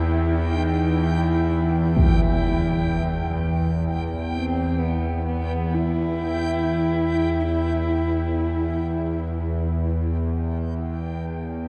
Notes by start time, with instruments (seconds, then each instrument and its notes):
Already playing: synth drone E2, synth texture G5
0.08 horsehead fiddle E4
0.54 horsehead fiddle D#4
1.02 horsehead fiddle E4
1.95 horsehead fiddle E4, impact
4.33 horsehead fiddle C4
4.79 horsehead fiddle B3
5.25 horsehead fiddle B3
5.73 horsehead fiddle E4